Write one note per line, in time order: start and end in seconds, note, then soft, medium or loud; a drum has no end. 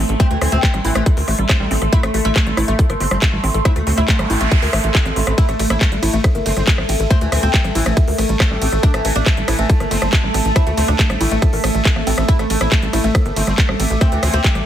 0.00 5.37 A3 medium
0.00 14.66 A4 medium
0.00 14.66 E5 medium
0.00 5.82 C6 medium
0.09 0.15 A1 medium
0.09 0.13 A4 medium
0.09 closed hi-hat medium
0.20 0.29 A3 loud
0.20 0.27 C4 loud
0.20 kick loud
0.20 cross-stick soft
0.20 closed hi-hat medium
0.31 0.37 D2 medium
0.31 0.37 E3 medium
0.31 0.38 A3 medium
0.31 closed hi-hat soft
0.41 0.47 D2 loud
0.41 0.48 E3 medium
0.41 0.49 A3 medium
0.41 0.53 C4 medium
0.41 cross-stick medium
0.41 open hi-hat loud
0.52 0.58 D2 medium
0.52 0.57 A3 loud
0.52 0.59 C4 medium
0.52 closed hi-hat medium
0.63 0.70 E3 medium
0.63 0.73 A3 medium
0.63 kick loud
0.63 clap loud
0.63 closed hi-hat medium
0.74 0.80 A1 medium
0.74 0.81 G3 medium
0.74 cross-stick soft
0.74 closed hi-hat soft
0.85 0.91 A1 loud
0.85 0.91 E3 medium
0.85 0.96 C4 medium
0.85 0.95 E4 loud
0.85 open hi-hat loud
0.95 1.01 A1 medium
0.95 1.02 E3 medium
0.95 1.06 A3 loud
0.95 cross-stick medium
0.95 closed hi-hat medium
1.06 1.14 A4 medium
1.06 kick loud
1.06 closed hi-hat medium
1.17 1.23 D2 medium
1.17 1.27 A#4 medium
1.17 open hi-hat medium
1.28 1.34 A1 loud
1.28 1.35 A3 medium
1.28 cross-stick soft
1.28 open hi-hat loud
1.39 1.45 A1 medium
1.39 1.46 G3 medium
1.39 closed hi-hat medium
1.49 1.60 A3 medium
1.49 kick loud
1.49 cross-stick medium
1.49 clap loud
1.49 closed hi-hat medium
1.60 1.66 A1 medium
1.60 1.67 G3 medium
1.60 1.68 G3 medium
1.71 1.77 A1 loud
1.71 1.78 G3 medium
1.71 1.78 C4 medium
1.71 open hi-hat loud
1.82 1.88 A1 medium
1.82 1.86 A4 medium
1.82 cross-stick soft
1.82 closed hi-hat medium
1.93 2.02 A3 loud
1.93 1.99 E4 loud
1.93 kick loud
1.93 closed hi-hat medium
2.03 2.09 A1 medium
2.03 2.10 A3 medium
2.03 2.11 A3 medium
2.03 cross-stick medium
2.03 closed hi-hat soft
2.14 2.20 A1 loud
2.14 2.21 A3 medium
2.14 open hi-hat loud
2.25 2.31 A1 medium
2.25 2.29 A3 loud
2.25 2.32 E4 medium
2.25 closed hi-hat medium
2.36 2.46 A3 medium
2.36 2.42 A3 medium
2.36 kick loud
2.36 cross-stick soft
2.36 clap loud
2.36 closed hi-hat medium
2.46 2.53 A1 medium
2.46 2.54 G3 medium
2.46 closed hi-hat soft
2.57 2.63 A1 loud
2.57 2.64 A3 medium
2.57 2.68 E4 loud
2.57 cross-stick medium
2.57 open hi-hat loud
2.68 2.74 A1 loud
2.68 2.75 A3 medium
2.68 2.78 A3 loud
2.68 closed hi-hat medium
2.79 2.86 A4 medium
2.79 kick loud
2.79 closed hi-hat medium
2.90 2.96 G1 medium
2.90 3.00 A#4 medium
2.90 cross-stick soft
2.90 closed hi-hat soft
3.00 3.06 G1 loud
3.00 3.08 A3 medium
3.00 3.07 C4 medium
3.00 open hi-hat loud
3.11 3.17 G1 medium
3.11 3.19 G3 medium
3.11 3.18 C4 medium
3.11 cross-stick medium
3.11 closed hi-hat medium
3.22 3.32 A3 medium
3.22 kick loud
3.22 clap loud
3.22 closed hi-hat medium
3.33 3.39 A1 medium
3.33 3.40 G3 medium
3.44 3.50 A1 loud
3.44 3.51 C4 medium
3.44 cross-stick soft
3.44 open hi-hat loud
3.54 3.60 A1 loud
3.54 3.59 A4 medium
3.54 closed hi-hat medium
3.65 3.75 A3 loud
3.65 3.72 E4 loud
3.65 kick loud
3.65 cross-stick medium
3.65 closed hi-hat medium
3.65 noise sweep medium
3.76 3.82 D2 medium
3.76 3.83 A3 medium
3.76 closed hi-hat soft
3.87 3.93 D2 loud
3.87 3.94 A3 medium
3.87 3.99 C4 loud
3.87 open hi-hat loud
3.98 4.04 D2 medium
3.98 4.02 A3 loud
3.98 4.04 E4 medium
3.98 cross-stick soft
3.98 closed hi-hat medium
4.08 4.19 A3 medium
4.08 4.15 A3 medium
4.08 kick loud
4.08 clap loud
4.08 closed hi-hat medium
4.19 4.25 A1 loud
4.19 4.27 G3 medium
4.19 cross-stick medium
4.19 closed hi-hat soft
4.30 4.36 A1 loud
4.30 4.42 G3 medium
4.30 4.37 A3 medium
4.30 4.40 E4 loud
4.30 open hi-hat loud
4.41 4.47 A1 medium
4.41 4.51 A3 loud
4.41 4.48 A3 medium
4.41 closed hi-hat medium
4.51 4.59 A4 medium
4.51 kick loud
4.51 cross-stick soft
4.51 closed hi-hat medium
4.62 4.68 D2 medium
4.62 4.73 A#4 medium
4.62 open hi-hat medium
4.73 4.79 A1 loud
4.73 4.80 A3 loud
4.73 cross-stick medium
4.73 open hi-hat loud
4.84 4.90 A1 medium
4.84 4.88 A3 medium
4.84 closed hi-hat medium
4.95 5.02 A4 loud
4.95 kick loud
4.95 clap loud
4.95 closed hi-hat medium
5.05 5.12 A1 medium
5.05 5.16 C4 medium
5.05 cross-stick soft
5.05 closed hi-hat soft
5.16 5.22 A1 loud
5.16 5.23 E3 medium
5.16 5.21 A3 medium
5.16 open hi-hat loud
5.27 5.33 A1 medium
5.27 5.34 E3 medium
5.27 5.31 A3 medium
5.27 cross-stick medium
5.27 closed hi-hat medium
5.38 5.47 A3 loud
5.38 14.66 A3 medium
5.38 5.45 E4 loud
5.38 kick loud
5.38 closed hi-hat medium
5.38 ride medium
5.49 5.55 A1 medium
5.49 5.55 A3 medium
5.49 5.56 A3 medium
5.49 cross-stick soft
5.49 closed hi-hat soft
5.59 5.65 A1 loud
5.59 5.67 A3 medium
5.59 5.66 A3 medium
5.59 open hi-hat loud
5.59 ride medium
5.70 5.76 A1 medium
5.70 5.80 A#3 medium
5.70 5.77 E4 medium
5.70 cross-stick medium
5.70 closed hi-hat medium
5.80 5.91 A3 medium
5.80 12.72 A5 medium
5.80 kick loud
5.80 clap loud
5.80 closed hi-hat medium
5.80 ride medium
5.92 5.98 A1 medium
5.92 5.99 G3 medium
5.92 closed hi-hat soft
6.03 6.09 A1 loud
6.03 6.09 A3 medium
6.03 6.13 E4 loud
6.03 cross-stick soft
6.03 open hi-hat loud
6.03 ride medium
6.13 6.19 A1 medium
6.13 6.24 A3 loud
6.13 6.20 A3 medium
6.13 closed hi-hat medium
6.24 6.32 A4 medium
6.24 kick loud
6.24 cross-stick medium
6.24 closed hi-hat medium
6.24 ride medium
6.35 6.41 G1 medium
6.35 6.45 A#4 medium
6.35 closed hi-hat soft
6.46 6.52 G1 loud
6.46 6.53 A3 medium
6.46 6.53 C4 medium
6.46 open hi-hat loud
6.46 ride medium
6.57 6.63 G1 loud
6.57 6.64 G3 medium
6.57 6.63 C4 medium
6.57 cross-stick soft
6.57 closed hi-hat medium
6.67 6.78 A3 medium
6.67 kick loud
6.67 clap loud
6.67 closed hi-hat medium
6.67 ride medium
6.78 6.84 A1 medium
6.78 6.86 G3 medium
6.78 cross-stick medium
6.89 6.95 A1 loud
6.89 6.96 C4 medium
6.89 open hi-hat loud
6.89 ride medium
7.00 7.06 A1 medium
7.00 7.04 A4 medium
7.00 closed hi-hat medium
7.10 7.20 A3 loud
7.10 7.17 C4 loud
7.10 kick loud
7.10 cross-stick soft
7.10 closed hi-hat medium
7.10 ride medium
7.21 7.27 D2 medium
7.21 7.28 E3 medium
7.21 7.29 A3 medium
7.21 closed hi-hat soft
7.32 7.38 D2 loud
7.32 7.39 E3 medium
7.32 7.39 A3 medium
7.32 7.44 C4 medium
7.32 cross-stick medium
7.32 open hi-hat loud
7.32 ride medium
7.43 7.49 D2 loud
7.43 7.53 A#3 medium
7.43 7.50 C4 medium
7.43 closed hi-hat medium
7.54 7.60 E3 medium
7.54 7.64 A3 medium
7.54 kick loud
7.54 clap loud
7.54 closed hi-hat medium
7.54 ride medium
7.64 7.70 A1 medium
7.64 7.72 G3 medium
7.64 cross-stick soft
7.64 closed hi-hat soft
7.75 7.81 A1 loud
7.75 7.82 E3 medium
7.75 7.87 C4 medium
7.75 7.86 E4 loud
7.75 open hi-hat loud
7.75 ride medium
7.86 7.92 A1 medium
7.86 7.93 E3 medium
7.86 7.96 A3 loud
7.86 cross-stick medium
7.86 closed hi-hat medium
7.97 8.04 A4 medium
7.97 kick loud
7.97 closed hi-hat medium
7.97 ride medium
8.08 8.14 D2 medium
8.08 8.18 A#4 medium
8.08 open hi-hat medium
8.18 8.24 A1 loud
8.18 8.26 A3 medium
8.18 cross-stick soft
8.18 open hi-hat loud
8.18 ride medium
8.29 8.35 A1 medium
8.29 8.37 G3 medium
8.29 closed hi-hat medium
8.40 8.50 A3 medium
8.40 kick loud
8.40 cross-stick medium
8.40 clap loud
8.40 closed hi-hat medium
8.40 ride medium
8.51 8.57 A1 medium
8.51 8.58 G3 medium
8.62 8.68 A1 loud
8.62 8.69 G3 medium
8.62 8.69 C4 medium
8.62 open hi-hat loud
8.62 ride medium
8.72 8.78 A1 loud
8.72 8.77 A4 medium
8.72 cross-stick soft
8.72 closed hi-hat medium
8.83 8.93 A3 loud
8.83 8.90 D4 loud
8.83 kick loud
8.83 closed hi-hat medium
8.83 ride medium
8.94 9.00 A1 medium
8.94 9.01 E3 medium
8.94 9.01 A3 medium
8.94 cross-stick medium
8.94 closed hi-hat soft
9.05 9.11 A1 loud
9.05 9.12 E3 medium
9.05 9.12 A3 medium
9.05 open hi-hat loud
9.05 ride medium
9.16 9.22 A1 medium
9.16 9.26 A#3 medium
9.16 9.22 D4 medium
9.16 closed hi-hat medium
9.26 9.33 E3 medium
9.26 9.37 A3 medium
9.26 kick loud
9.26 cross-stick soft
9.26 clap loud
9.26 closed hi-hat medium
9.26 ride medium
9.37 9.43 A1 medium
9.37 9.44 G3 medium
9.37 closed hi-hat soft
9.48 9.54 A1 loud
9.48 9.55 E3 medium
9.48 9.58 E4 loud
9.48 cross-stick medium
9.48 open hi-hat loud
9.48 ride medium
9.59 9.65 A1 medium
9.59 9.65 E3 medium
9.59 9.69 A3 loud
9.59 closed hi-hat medium
9.70 9.77 A4 medium
9.70 kick loud
9.70 closed hi-hat medium
9.70 ride medium
9.80 9.86 G1 medium
9.80 9.91 A#4 medium
9.80 cross-stick soft
9.80 closed hi-hat soft
9.91 9.97 G1 loud
9.91 9.98 A3 medium
9.91 9.98 C4 medium
9.91 open hi-hat loud
9.91 ride medium
10.02 10.08 G1 medium
10.02 10.09 G3 medium
10.02 10.09 C4 medium
10.02 cross-stick medium
10.02 closed hi-hat medium
10.13 10.23 A3 medium
10.13 kick loud
10.13 clap loud
10.13 closed hi-hat medium
10.13 ride medium
10.23 10.29 A1 medium
10.23 10.31 G3 medium
10.34 10.40 A1 loud
10.34 10.42 C4 medium
10.34 cross-stick soft
10.34 open hi-hat loud
10.34 ride medium
10.45 10.51 A1 medium
10.45 10.49 A4 medium
10.45 closed hi-hat medium
10.56 10.65 A3 loud
10.56 10.63 E4 loud
10.56 kick loud
10.56 cross-stick medium
10.56 closed hi-hat medium
10.56 ride medium
10.67 10.73 D2 medium
10.67 10.73 A3 medium
10.67 10.74 A3 medium
10.67 closed hi-hat soft
10.77 10.83 D2 loud
10.77 10.84 A3 medium
10.77 10.85 A3 medium
10.77 10.89 C4 medium
10.77 open hi-hat loud
10.77 ride medium
10.88 10.94 D2 medium
10.88 10.98 A#3 medium
10.88 10.95 D4 medium
10.88 cross-stick soft
10.88 closed hi-hat medium
10.99 11.06 A3 medium
10.99 11.09 A3 medium
10.99 kick loud
10.99 clap loud
10.99 closed hi-hat medium
10.99 ride medium
11.10 11.16 A1 medium
11.10 11.17 G3 medium
11.10 cross-stick medium
11.10 closed hi-hat soft
11.21 11.27 A1 loud
11.21 11.32 G3 medium
11.21 11.27 A3 medium
11.21 11.31 E4 loud
11.21 open hi-hat loud
11.21 ride medium
11.31 11.37 A1 loud
11.31 11.42 A3 loud
11.31 11.38 A3 medium
11.31 closed hi-hat medium
11.42 11.50 A4 medium
11.42 kick loud
11.42 cross-stick soft
11.42 closed hi-hat medium
11.42 ride medium
11.53 11.59 A1 medium
11.53 11.63 A#4 medium
11.53 open hi-hat medium
11.64 11.70 A1 loud
11.64 11.74 A3 medium
11.64 cross-stick medium
11.64 open hi-hat loud
11.64 ride medium
11.75 11.81 A1 medium
11.75 11.79 G3 medium
11.75 closed hi-hat medium
11.85 11.96 A4 medium
11.85 kick loud
11.85 clap loud
11.85 closed hi-hat medium
11.85 ride medium
11.96 12.02 A1 medium
11.96 12.03 A#3 loud
11.96 cross-stick soft
12.07 12.13 A1 loud
12.07 12.14 E3 medium
12.07 12.17 C4 loud
12.07 open hi-hat loud
12.07 ride medium
12.18 12.24 A1 medium
12.18 12.25 E3 medium
12.18 12.28 C4 medium
12.18 cross-stick medium
12.18 closed hi-hat medium
12.28 12.38 A3 loud
12.28 12.35 E4 loud
12.28 kick loud
12.28 closed hi-hat medium
12.28 ride medium
12.39 12.45 A1 medium
12.39 12.46 A3 medium
12.39 12.47 A3 medium
12.39 cross-stick soft
12.39 closed hi-hat soft
12.50 12.56 A1 loud
12.50 12.57 A3 medium
12.50 open hi-hat loud
12.50 ride medium
12.61 12.67 A1 medium
12.61 12.71 A#3 medium
12.61 12.68 E4 medium
12.61 cross-stick medium
12.61 closed hi-hat medium
12.70 12.82 A3 medium
12.70 12.78 A3 medium
12.70 14.66 D6 loud
12.70 kick loud
12.70 clap loud
12.70 closed hi-hat medium
12.70 ride medium
12.82 12.88 A1 loud
12.82 12.90 G3 medium
12.82 closed hi-hat soft
12.93 12.99 A1 loud
12.93 13.00 A3 medium
12.93 13.04 E4 loud
12.93 cross-stick soft
12.93 open hi-hat loud
12.93 ride medium
13.04 13.10 A1 medium
13.04 13.14 A3 loud
13.04 13.11 A3 medium
13.04 closed hi-hat medium
13.15 13.22 A4 medium
13.15 kick loud
13.15 cross-stick medium
13.15 closed hi-hat medium
13.15 ride medium
13.26 13.32 G1 medium
13.26 13.36 A#4 medium
13.26 closed hi-hat soft
13.36 13.42 G1 loud
13.36 13.44 A3 medium
13.36 13.43 C4 medium
13.36 open hi-hat loud
13.36 ride medium
13.47 13.53 G1 medium
13.47 13.55 G3 medium
13.47 13.54 C4 medium
13.47 cross-stick soft
13.47 closed hi-hat medium
13.58 13.68 A3 medium
13.58 kick loud
13.58 clap loud
13.58 closed hi-hat medium
13.58 ride medium
13.69 13.75 A1 medium
13.69 13.76 G3 medium
13.69 cross-stick medium
13.80 13.86 A1 loud
13.80 13.87 C4 medium
13.80 open hi-hat loud
13.80 ride medium
13.90 13.96 A1 medium
13.90 13.95 A4 medium
13.90 closed hi-hat medium
14.01 14.11 A3 loud
14.01 14.08 C4 loud
14.01 kick loud
14.01 cross-stick soft
14.01 closed hi-hat medium
14.01 ride medium
14.12 14.18 D2 medium
14.12 14.19 E3 medium
14.12 14.19 A3 medium
14.12 closed hi-hat soft
14.23 14.29 D2 loud
14.23 14.30 E3 medium
14.23 14.30 A3 medium
14.23 14.35 C4 medium
14.23 cross-stick medium
14.23 open hi-hat loud
14.23 ride medium
14.34 14.40 D2 medium
14.34 14.44 A#3 medium
14.34 14.40 C4 medium
14.34 closed hi-hat medium
14.44 14.51 E3 medium
14.44 kick loud
14.44 clap loud
14.44 closed hi-hat medium
14.44 ride medium
14.55 14.61 A1 medium
14.55 14.62 G3 medium
14.55 cross-stick soft
14.55 closed hi-hat soft